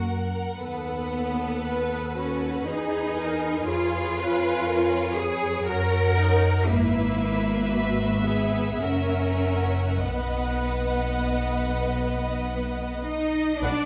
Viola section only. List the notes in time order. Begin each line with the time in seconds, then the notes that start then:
1.65 B4
2.18 F#4
2.68 G#4
3.17 A#4
3.68 G#4
4.18 B4
4.68 A#4
5.17 G#4
5.68 F#4
6.18 D#4
6.68 E4
7.71 F#4
8.25 G#4
8.81 A#4
10.03 B4
13.63 B4 F#5